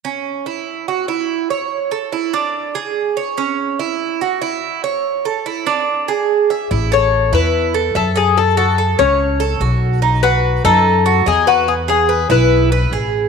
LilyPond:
<<
  \new Staff \with { instrumentName = "Cuban tres" } { \time 4/4 \key a \major \tempo 4 = 144 r1 | r1 | r1 | r1 |
r8 cis''4 b'4. a'8 gis'8 | a'8 a'4 cis''4. r4 | r8 b'4 a'4. gis'8 fis'8 | gis'8 gis'4 b'4. r4 | }
  \new Staff \with { instrumentName = "Cuban tres" } { \time 4/4 \key a \major cis'4 e'4 fis'8 e'4 cis''8~ | cis''8 a'8 e'8 d'4 gis'4 cis''8 | cis'4 e'4 fis'8 e'4 cis''8~ | cis''8 a'8 e'8 d'4 gis'4 e''8 |
e'8 a'4 e'4 a'8 e''8 a'8~ | a'8 fis'8 a'8 cis'4 a'8 fis'4 | dis'8 fis'4 dis'4 fis'8 dis''8 b'8~ | b'8 gis'8 b'8 e'4 b'8 gis'4 | }
  \new Staff \with { instrumentName = "Upright bass" } { \clef bass \time 4/4 \key a \major r1 | r1 | r1 | r1 |
a,,4. e,4. fis,4~ | fis,4. cis,4. b,,4~ | b,,4. fis,4. e,4~ | e,4. b,,4. a,,4 | }
>>